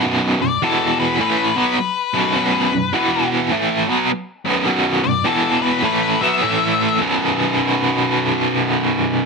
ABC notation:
X:1
M:4/4
L:1/8
Q:"Swing" 1/4=103
K:E
V:1 name="Lead electric guitar"
z =d A B B B3- | B3 z4 z | z =d A B B e3 | z8 |]
V:2 name="Overdriven electric guitar" clef=bass
[B,,,F,,B,,] [B,,,F,,] [E,,B,,E,]2 [A,,E,A,] [B,,F,B,] z [B,,,F,,B,,] | [B,,,F,,B,,] [B,,,F,,] [E,,B,,E,]2 [A,,E,A,] [B,,F,B,] z [B,,,F,,B,,] | [B,,,F,,B,,] [B,,,F,,] [E,,B,,E,]2 [A,,E,A,] [B,,F,B,] [A,,E,A,]2 | [B,,,F,,B,,]8 |]